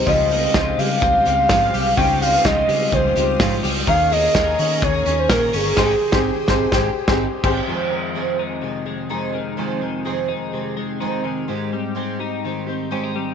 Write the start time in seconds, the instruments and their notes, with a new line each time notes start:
Already playing: clean electric guitar G3 C4
0.06 fingered electric bass C#2, twelve-string acoustic guitar C#3 F3 G#3 C4 G4, clean electric guitar C#3 F4, upright piano D#4 F4 G4 C5, string machine G4 F5 C6 D#6, soft synth lead D#5, kick, hi-hat pedal, open hi-hat
0.30 twelve-string acoustic guitar G#3 C4 G4, clean electric guitar A#3, hi-hat pedal, open hi-hat
0.44 clean electric guitar C4
0.54 fingered electric bass C#2, twelve-string acoustic guitar C#3 F3 G#3 C4 G4, clean electric guitar F4, kick, snare, hi-hat pedal, open hi-hat
0.77 fingered electric bass C#3, clean electric guitar G3, twelve-string acoustic guitar G#3 C4 G4, soft synth lead F5, hi-hat pedal, open hi-hat
1.01 fingered electric bass C#2, twelve-string acoustic guitar F3 G#3 C4 G4, clean electric guitar C4, kick, hi-hat pedal, open hi-hat
1.25 fingered electric bass C#2, clean electric guitar G3, twelve-string acoustic guitar G#3 C4 G4, soft synth lead F5, hi-hat pedal, open hi-hat
1.48 fingered electric bass G#2, twelve-string acoustic guitar C#3 F3 G#3 C4 G4, clean electric guitar F4, soft synth lead F5, kick, snare, hi-hat pedal, open hi-hat
1.73 fingered electric bass C2, clean electric guitar G3, twelve-string acoustic guitar G#3 C4 G4, hi-hat pedal, open hi-hat
1.97 fingered electric bass C#2, twelve-string acoustic guitar C#3 F3 G#3 C4 G4, clean electric guitar C#3 F4, upright piano C#4 D#4 F4 G4, soft synth lead G5, kick, hi-hat pedal, open hi-hat
2.21 twelve-string acoustic guitar G#3 C4 G4, clean electric guitar C4, soft synth lead F5, hi-hat pedal, open hi-hat
2.44 fingered electric bass C#2, twelve-string acoustic guitar C#3 F3 G#3 C4 G4, clean electric guitar F4, soft synth lead D#5, kick, snare
2.68 fingered electric bass C#3, clean electric guitar G3, twelve-string acoustic guitar G#3 C4 G4, hi-hat pedal, open hi-hat
2.92 fingered electric bass C#2, twelve-string acoustic guitar F3 G#3 C4 G4, clean electric guitar C4, soft synth lead C5, kick, hi-hat pedal, open hi-hat
3.16 fingered electric bass C#2, clean electric guitar G3, twelve-string acoustic guitar G#3 C4 G4, upright piano D#4 F4 G4 C5, hi-hat pedal, open hi-hat
3.40 fingered electric bass G#2, twelve-string acoustic guitar C#3 F3 G#3 C4 G4, clean electric guitar F4, kick, snare, hi-hat pedal, open hi-hat
3.63 fingered electric bass C#2, clean electric guitar G3, twelve-string acoustic guitar G#3 C4 G4, hi-hat pedal, open hi-hat
3.87 fingered electric bass D#2, clean electric guitar D#3 A#4, twelve-string acoustic guitar D#3 A#3 C#4 G#4, upright piano D#4 G#4 C#5, string machine C#5 G#5 A#5, soft synth lead F5, kick, hi-hat pedal, open hi-hat
4.11 twelve-string acoustic guitar A#3 C#4 G#4, clean electric guitar G#4, soft synth lead D#5, hi-hat pedal, open hi-hat
4.34 fingered electric bass D#2, twelve-string acoustic guitar D#3 A#3 C#4 G#4, clean electric guitar A#4, kick, snare, hi-hat pedal, open hi-hat
4.59 fingered electric bass D#3, twelve-string acoustic guitar A#3 C#4 G#4, clean electric guitar C#4, soft synth lead D#5, hi-hat pedal, open hi-hat
4.81 fingered electric bass D#2, twelve-string acoustic guitar D#3 A#3 C#4 G#4, clean electric guitar G#4, soft synth lead C#5, kick, hi-hat pedal, open hi-hat
5.06 fingered electric bass D#2, twelve-string acoustic guitar A#3 C#4 G#4, clean electric guitar C#4, hi-hat pedal, open hi-hat
5.19 soft synth lead C5
5.29 fingered electric bass A#2, twelve-string acoustic guitar D#3 A#3 C#4 G#4, clean electric guitar A#4, soft synth lead A#4, kick, snare, hi-hat pedal, open hi-hat
5.47 soft synth lead A#4
5.53 fingered electric bass G1, twelve-string acoustic guitar A#3 C#4 G#4, clean electric guitar C#4, soft synth lead G#4, hi-hat pedal, open hi-hat
5.77 fingered electric bass G#1, clean electric guitar G#2 D#4, twelve-string acoustic guitar G#3 C4 D#4 G4, upright piano G4 G#4 C5, string machine C5 G5 G#5, kick, snare, crash
6.12 fingered electric bass G#1, twelve-string acoustic guitar C4 D#4 G4, upright piano G4 G#4 C5, kick, snare
6.48 fingered electric bass G#1, twelve-string acoustic guitar D#4 G4, upright piano G4 G#4 C5, kick, snare
6.52 twelve-string acoustic guitar C4
6.72 fingered electric bass G#1, twelve-string acoustic guitar G#3 C4 D#4 G4, upright piano G4 G#4 C5, kick, snare
7.08 fingered electric bass G#1, twelve-string acoustic guitar C4 D#4 G4, upright piano G4 G#4 C5, kick, snare
7.44 fingered electric bass G#1, twelve-string acoustic guitar C4 D#4 G4, upright piano G4 G#4 C5, kick, crash
7.67 clean electric guitar F2, twelve-string acoustic guitar F2 C3 D#3 G#3 C4 G#4
7.91 clean electric guitar D#3, twelve-string acoustic guitar D#3 G#3 C4 G#4
8.14 twelve-string acoustic guitar F2 C3 D#3 G#3 C4 G#4, clean electric guitar G#3
8.38 twelve-string acoustic guitar D#3 G#3 C4 G#4, clean electric guitar D#4
8.61 clean electric guitar C3, twelve-string acoustic guitar D#3 G#3 C4 G#4
8.85 twelve-string acoustic guitar D#3 G#3 C4 G#4, clean electric guitar G#3
9.09 twelve-string acoustic guitar F2 C3 D#3 G#3 C4 G#4, clean electric guitar D#4
9.32 clean electric guitar D#3, twelve-string acoustic guitar D#3 G#3 C4 G#4
9.57 twelve-string acoustic guitar F2 C3 D#3 G#3 C4 G#4, clean electric guitar F2
9.81 clean electric guitar D#3, twelve-string acoustic guitar D#3 G#3 C4 G#4
10.05 twelve-string acoustic guitar F2 C3 D#3 G#3 C4 G#4, clean electric guitar G#3
10.29 twelve-string acoustic guitar D#3 G#3 C4 G#4, clean electric guitar D#4
10.53 clean electric guitar C3, twelve-string acoustic guitar D#3 G#3 C4 G#4
10.77 twelve-string acoustic guitar D#3 G#3 C4 G#4, clean electric guitar G#3
11.00 twelve-string acoustic guitar F2 C3 D#3 G#3 C4 G#4, clean electric guitar D#4
11.24 clean electric guitar D#3, twelve-string acoustic guitar D#3 G#3 C4 G#4
11.48 clean electric guitar G#2, twelve-string acoustic guitar G#3 C4 D#4 G4
11.72 clean electric guitar G3, twelve-string acoustic guitar C4 D#4 G4
11.95 twelve-string acoustic guitar G#3 C4 D#4 G4, clean electric guitar C4
12.19 twelve-string acoustic guitar C4 D#4 G4, clean electric guitar D#4
12.44 clean electric guitar D#3, twelve-string acoustic guitar G#3 C4 D#4 G4
12.67 clean electric guitar C4, twelve-string acoustic guitar C4 D#4 G4
12.91 twelve-string acoustic guitar G#3 C4 D#4 G4, clean electric guitar C#4
13.04 clean electric guitar D#4
13.14 clean electric guitar G3, twelve-string acoustic guitar C4 D#4 G4